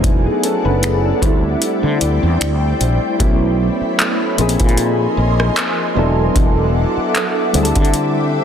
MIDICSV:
0, 0, Header, 1, 6, 480
1, 0, Start_track
1, 0, Tempo, 789474
1, 24, Time_signature, 4, 2, 24, 8
1, 5133, End_track
2, 0, Start_track
2, 0, Title_t, "Ambient pad"
2, 0, Program_c, 0, 92
2, 0, Note_on_c, 0, 64, 79
2, 0, Note_on_c, 0, 69, 77
2, 0, Note_on_c, 0, 74, 72
2, 0, Note_on_c, 0, 78, 87
2, 733, Note_off_c, 0, 69, 0
2, 733, Note_off_c, 0, 78, 0
2, 734, Note_off_c, 0, 74, 0
2, 743, Note_on_c, 0, 74, 76
2, 744, Note_on_c, 0, 72, 80
2, 744, Note_on_c, 0, 79, 86
2, 1921, Note_off_c, 0, 64, 0
2, 1932, Note_off_c, 0, 72, 0
2, 1932, Note_off_c, 0, 74, 0
2, 1932, Note_off_c, 0, 79, 0
2, 1942, Note_on_c, 0, 76, 73
2, 1943, Note_on_c, 0, 73, 73
2, 1943, Note_on_c, 0, 83, 88
2, 1944, Note_on_c, 0, 69, 77
2, 2656, Note_off_c, 0, 76, 0
2, 2656, Note_off_c, 0, 83, 0
2, 2657, Note_off_c, 0, 69, 0
2, 2657, Note_off_c, 0, 73, 0
2, 2662, Note_on_c, 0, 75, 78
2, 2662, Note_on_c, 0, 80, 79
2, 2662, Note_on_c, 0, 84, 100
2, 2663, Note_on_c, 0, 70, 91
2, 3613, Note_off_c, 0, 75, 0
2, 3614, Note_off_c, 0, 70, 0
2, 3614, Note_off_c, 0, 80, 0
2, 3614, Note_off_c, 0, 84, 0
2, 3623, Note_on_c, 0, 78, 75
2, 3624, Note_on_c, 0, 69, 83
2, 3625, Note_on_c, 0, 76, 76
2, 3625, Note_on_c, 0, 86, 91
2, 4574, Note_off_c, 0, 78, 0
2, 4575, Note_off_c, 0, 69, 0
2, 4584, Note_on_c, 0, 72, 82
2, 4584, Note_on_c, 0, 79, 77
2, 5133, Note_off_c, 0, 72, 0
2, 5133, Note_off_c, 0, 76, 0
2, 5133, Note_off_c, 0, 79, 0
2, 5133, Note_off_c, 0, 86, 0
2, 5133, End_track
3, 0, Start_track
3, 0, Title_t, "Synth keys"
3, 0, Program_c, 1, 88
3, 0, Control_c, 1, 64, 127
3, 0, Note_on_c, 1, 54, 78
3, 0, Note_on_c, 1, 57, 70
3, 0, Note_on_c, 1, 59, 65
3, 0, Note_on_c, 1, 62, 67
3, 0, Note_on_c, 1, 64, 82
3, 158, Note_on_c, 1, 68, 61
3, 161, Note_off_c, 1, 59, 0
3, 161, Note_on_c, 1, 59, 53
3, 261, Note_off_c, 1, 68, 0
3, 263, Note_off_c, 1, 59, 0
3, 267, Note_on_c, 1, 69, 68
3, 272, Note_on_c, 1, 61, 59
3, 389, Note_off_c, 1, 69, 0
3, 392, Note_off_c, 1, 61, 0
3, 398, Note_on_c, 1, 71, 73
3, 403, Note_off_c, 1, 62, 0
3, 403, Note_on_c, 1, 62, 58
3, 501, Note_off_c, 1, 71, 0
3, 503, Note_off_c, 1, 62, 0
3, 510, Note_on_c, 1, 68, 67
3, 513, Note_on_c, 1, 59, 58
3, 631, Note_off_c, 1, 68, 0
3, 632, Note_off_c, 1, 59, 0
3, 640, Note_on_c, 1, 69, 62
3, 644, Note_on_c, 1, 61, 51
3, 722, Note_off_c, 1, 54, 0
3, 725, Note_off_c, 1, 57, 0
3, 738, Note_on_c, 1, 55, 71
3, 744, Note_on_c, 1, 57, 69
3, 749, Note_on_c, 1, 60, 62
3, 751, Note_off_c, 1, 64, 0
3, 751, Control_c, 1, 64, 0
3, 755, Note_on_c, 1, 62, 65
3, 762, Note_on_c, 1, 64, 80
3, 865, Note_off_c, 1, 69, 0
3, 867, Note_off_c, 1, 61, 0
3, 870, Control_c, 1, 64, 127
3, 1917, Note_off_c, 1, 55, 0
3, 1920, Note_off_c, 1, 57, 0
3, 1923, Note_off_c, 1, 60, 0
3, 1926, Note_off_c, 1, 62, 0
3, 1929, Note_off_c, 1, 64, 0
3, 1944, Note_on_c, 1, 54, 73
3, 1946, Note_on_c, 1, 57, 69
3, 1950, Note_on_c, 1, 59, 71
3, 1952, Control_c, 1, 64, 0
3, 1952, Note_on_c, 1, 61, 66
3, 1954, Note_on_c, 1, 64, 85
3, 2042, Control_c, 1, 64, 127
3, 2659, Note_on_c, 1, 53, 74
3, 2664, Note_off_c, 1, 54, 0
3, 2664, Note_on_c, 1, 58, 68
3, 2665, Note_off_c, 1, 57, 0
3, 2667, Note_off_c, 1, 59, 0
3, 2668, Note_off_c, 1, 61, 0
3, 2669, Note_off_c, 1, 64, 0
3, 2671, Note_on_c, 1, 60, 68
3, 2673, Control_c, 1, 64, 0
3, 2675, Note_on_c, 1, 63, 68
3, 2682, Note_on_c, 1, 68, 78
3, 2795, Control_c, 1, 64, 127
3, 3602, Note_off_c, 1, 53, 0
3, 3605, Note_off_c, 1, 58, 0
3, 3608, Note_off_c, 1, 60, 0
3, 3611, Note_off_c, 1, 63, 0
3, 3614, Note_off_c, 1, 68, 0
3, 3617, Note_on_c, 1, 54, 80
3, 3623, Note_on_c, 1, 59, 72
3, 3629, Note_on_c, 1, 62, 74
3, 3632, Control_c, 1, 64, 0
3, 3634, Note_on_c, 1, 64, 70
3, 3639, Note_on_c, 1, 69, 83
3, 3745, Control_c, 1, 64, 127
3, 4561, Note_off_c, 1, 54, 0
3, 4564, Note_off_c, 1, 59, 0
3, 4567, Note_off_c, 1, 62, 0
3, 4570, Note_off_c, 1, 64, 0
3, 4573, Note_off_c, 1, 69, 0
3, 4578, Note_on_c, 1, 55, 75
3, 4583, Note_on_c, 1, 60, 67
3, 4589, Note_on_c, 1, 62, 67
3, 4591, Control_c, 1, 64, 0
3, 4595, Note_on_c, 1, 64, 71
3, 4601, Note_on_c, 1, 68, 71
3, 4635, Note_off_c, 1, 68, 0
3, 4640, Note_on_c, 1, 69, 81
3, 4704, Control_c, 1, 64, 127
3, 5133, Note_off_c, 1, 55, 0
3, 5133, Note_off_c, 1, 60, 0
3, 5133, Note_off_c, 1, 62, 0
3, 5133, Note_off_c, 1, 64, 0
3, 5133, Note_off_c, 1, 69, 0
3, 5133, End_track
4, 0, Start_track
4, 0, Title_t, "Fretless electric bass"
4, 0, Program_c, 2, 35
4, 0, Note_on_c, 2, 28, 102
4, 165, Note_off_c, 2, 28, 0
4, 394, Note_on_c, 2, 30, 85
4, 672, Note_off_c, 2, 30, 0
4, 743, Note_on_c, 2, 38, 93
4, 934, Note_off_c, 2, 38, 0
4, 1113, Note_on_c, 2, 50, 95
4, 1201, Note_off_c, 2, 50, 0
4, 1224, Note_on_c, 2, 38, 85
4, 1327, Note_off_c, 2, 38, 0
4, 1355, Note_on_c, 2, 40, 94
4, 1442, Note_off_c, 2, 40, 0
4, 1464, Note_on_c, 2, 38, 84
4, 1654, Note_off_c, 2, 38, 0
4, 1705, Note_on_c, 2, 34, 92
4, 1807, Note_off_c, 2, 34, 0
4, 1945, Note_on_c, 2, 35, 105
4, 2238, Note_off_c, 2, 35, 0
4, 2665, Note_on_c, 2, 34, 95
4, 2768, Note_off_c, 2, 34, 0
4, 2797, Note_on_c, 2, 46, 100
4, 3074, Note_off_c, 2, 46, 0
4, 3145, Note_on_c, 2, 34, 93
4, 3335, Note_off_c, 2, 34, 0
4, 3626, Note_on_c, 2, 28, 95
4, 3815, Note_off_c, 2, 28, 0
4, 3865, Note_on_c, 2, 28, 114
4, 4158, Note_off_c, 2, 28, 0
4, 4586, Note_on_c, 2, 38, 94
4, 4688, Note_off_c, 2, 38, 0
4, 4718, Note_on_c, 2, 50, 105
4, 5097, Note_off_c, 2, 50, 0
4, 5133, End_track
5, 0, Start_track
5, 0, Title_t, "Muted fretless electric bass strokes"
5, 2315, Note_on_c, 9, 29, 49
5, 2376, Note_off_c, 9, 29, 0
5, 4236, Note_on_c, 9, 29, 48
5, 4297, Note_off_c, 9, 29, 0
5, 5133, End_track
6, 0, Start_track
6, 0, Title_t, "Drums"
6, 24, Note_on_c, 9, 36, 100
6, 24, Note_on_c, 9, 42, 60
6, 85, Note_off_c, 9, 36, 0
6, 85, Note_off_c, 9, 42, 0
6, 265, Note_on_c, 9, 42, 70
6, 325, Note_off_c, 9, 42, 0
6, 504, Note_on_c, 9, 42, 63
6, 511, Note_on_c, 9, 26, 101
6, 565, Note_off_c, 9, 42, 0
6, 572, Note_off_c, 9, 26, 0
6, 743, Note_on_c, 9, 36, 92
6, 746, Note_on_c, 9, 42, 69
6, 804, Note_off_c, 9, 36, 0
6, 806, Note_off_c, 9, 42, 0
6, 983, Note_on_c, 9, 42, 80
6, 1044, Note_off_c, 9, 42, 0
6, 1223, Note_on_c, 9, 42, 59
6, 1283, Note_off_c, 9, 42, 0
6, 1465, Note_on_c, 9, 42, 69
6, 1471, Note_on_c, 9, 26, 109
6, 1526, Note_off_c, 9, 42, 0
6, 1531, Note_off_c, 9, 26, 0
6, 1707, Note_on_c, 9, 42, 62
6, 1768, Note_off_c, 9, 42, 0
6, 1945, Note_on_c, 9, 36, 107
6, 1946, Note_on_c, 9, 42, 64
6, 2006, Note_off_c, 9, 36, 0
6, 2007, Note_off_c, 9, 42, 0
6, 2426, Note_on_c, 9, 42, 65
6, 2433, Note_on_c, 9, 39, 112
6, 2487, Note_off_c, 9, 42, 0
6, 2494, Note_off_c, 9, 39, 0
6, 2665, Note_on_c, 9, 42, 75
6, 2726, Note_off_c, 9, 42, 0
6, 2730, Note_on_c, 9, 42, 63
6, 2791, Note_off_c, 9, 42, 0
6, 2794, Note_on_c, 9, 42, 48
6, 2797, Note_on_c, 9, 36, 93
6, 2849, Note_off_c, 9, 42, 0
6, 2849, Note_on_c, 9, 42, 40
6, 2858, Note_off_c, 9, 36, 0
6, 2903, Note_off_c, 9, 42, 0
6, 2903, Note_on_c, 9, 42, 88
6, 2964, Note_off_c, 9, 42, 0
6, 3282, Note_on_c, 9, 37, 97
6, 3343, Note_off_c, 9, 37, 0
6, 3384, Note_on_c, 9, 42, 72
6, 3390, Note_on_c, 9, 39, 118
6, 3445, Note_off_c, 9, 42, 0
6, 3450, Note_off_c, 9, 39, 0
6, 3865, Note_on_c, 9, 36, 98
6, 3865, Note_on_c, 9, 42, 60
6, 3925, Note_off_c, 9, 36, 0
6, 3926, Note_off_c, 9, 42, 0
6, 4346, Note_on_c, 9, 42, 65
6, 4353, Note_on_c, 9, 39, 115
6, 4407, Note_off_c, 9, 42, 0
6, 4414, Note_off_c, 9, 39, 0
6, 4586, Note_on_c, 9, 42, 76
6, 4646, Note_off_c, 9, 42, 0
6, 4651, Note_on_c, 9, 42, 64
6, 4712, Note_off_c, 9, 42, 0
6, 4715, Note_on_c, 9, 42, 52
6, 4718, Note_on_c, 9, 36, 94
6, 4771, Note_off_c, 9, 42, 0
6, 4771, Note_on_c, 9, 42, 43
6, 4778, Note_off_c, 9, 36, 0
6, 4825, Note_off_c, 9, 42, 0
6, 4825, Note_on_c, 9, 42, 86
6, 4885, Note_off_c, 9, 42, 0
6, 5133, End_track
0, 0, End_of_file